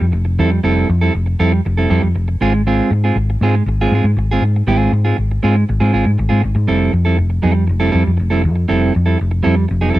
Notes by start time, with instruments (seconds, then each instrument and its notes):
0.00 fingered electric bass F2, muted clean electric guitar stroke
0.12 fingered electric bass F1, muted clean electric guitar stroke
0.25 muted clean electric guitar stroke
0.39 fingered electric bass F2, clean electric guitar G3 C4 E4 A4
0.51 muted clean electric guitar stroke
0.63 fingered electric bass F1, clean electric guitar G3 C4 E4 A4
0.89 fingered electric bass F2
1.01 clean electric guitar G3 C4 E4 A4
1.14 fingered electric bass F1, muted clean electric guitar stroke
1.26 muted clean electric guitar stroke
1.39 fingered electric bass F2, clean electric guitar G3 C4 E4 A4
1.53 muted clean electric guitar stroke
1.65 fingered electric bass F1, muted clean electric guitar stroke
1.77 clean electric guitar G3 C4 E4 A4
1.90 fingered electric bass F2, clean electric guitar G3 C4 E4 A4
2.03 fingered electric bass F2, muted clean electric guitar stroke
2.15 fingered electric bass F1, muted clean electric guitar stroke
2.28 muted clean electric guitar stroke
2.41 fingered electric bass G#1, clean electric guitar G#3 C4 F4 G#4
2.54 muted clean electric guitar stroke
2.67 clean electric guitar G#3 C4 F4 G#4
2.91 fingered electric bass G#2, muted clean electric guitar stroke
3.04 clean electric guitar G#3 C4 F4 G#4
3.16 fingered electric bass G#1, muted clean electric guitar stroke
3.30 muted clean electric guitar stroke
3.41 fingered electric bass G#2, clean electric guitar G#3 C4 F4 G#4
3.56 muted clean electric guitar stroke
3.66 fingered electric bass G#1, muted clean electric guitar stroke
3.81 clean electric guitar G#3 C4 F4 G#4
3.91 fingered electric bass G#2, clean electric guitar G#3 C4 F4 G#4
4.04 fingered electric bass G#2, muted clean electric guitar stroke
4.17 fingered electric bass G#1, muted clean electric guitar stroke
4.31 clean electric guitar G#3 C4 F4 G#4
4.41 fingered electric bass G#2
4.56 muted clean electric guitar stroke
4.67 fingered electric bass G#1, clean electric guitar G#3 C4 F4 G#4
4.92 fingered electric bass G#2, muted clean electric guitar stroke
5.05 clean electric guitar G#3 C4 F4 G#4
5.17 fingered electric bass G#1, muted clean electric guitar stroke
5.31 muted clean electric guitar stroke
5.43 fingered electric bass G#2, clean electric guitar G#3 C4 F4 G#4
5.56 muted clean electric guitar stroke
5.69 fingered electric bass G#1, muted clean electric guitar stroke
5.80 fingered electric bass G#2, clean electric guitar G#3 C4 F4 G#4
5.93 fingered electric bass G#1, clean electric guitar G#3 C4 F4 G#4
6.06 fingered electric bass G#2, muted clean electric guitar stroke
6.18 fingered electric bass G#1, muted clean electric guitar stroke
6.29 fingered electric bass G#2, clean electric guitar G#3 C4 F4 G#4
6.43 fingered electric bass G#1, muted clean electric guitar stroke
6.55 fingered electric bass G#2, muted clean electric guitar stroke
6.67 fingered electric bass F1, clean electric guitar G3 C4 E4 A4
6.93 fingered electric bass F2, muted clean electric guitar stroke
7.05 clean electric guitar G3 C4 E4 A4
7.19 fingered electric bass F1
7.30 muted clean electric guitar stroke
7.42 fingered electric bass F2, clean electric guitar G3 C4 E4 A4
7.54 muted clean electric guitar stroke
7.67 fingered electric bass F1, muted clean electric guitar stroke
7.80 clean electric guitar G3 C4 E4 A4
7.91 fingered electric bass F2, clean electric guitar G3 C4 E4 A4
8.04 fingered electric bass F2, muted clean electric guitar stroke
8.17 fingered electric bass F1, muted clean electric guitar stroke
8.30 clean electric guitar G3 C4 E4 A4
8.45 fingered electric bass F2
8.56 muted clean electric guitar stroke
8.68 fingered electric bass F1, clean electric guitar G3 C4 E4 A4
8.94 fingered electric bass F2, muted clean electric guitar stroke
9.06 clean electric guitar G3 C4 E4 A4
9.19 fingered electric bass F1, muted clean electric guitar stroke
9.31 muted clean electric guitar stroke
9.43 fingered electric bass F2, clean electric guitar G3 C4 E4 A4
9.56 muted clean electric guitar stroke
9.68 fingered electric bass F1, muted clean electric guitar stroke
9.81 clean electric guitar G3 C4 E4 A4
9.93 fingered electric bass F2, clean electric guitar G3 C4 E4 A4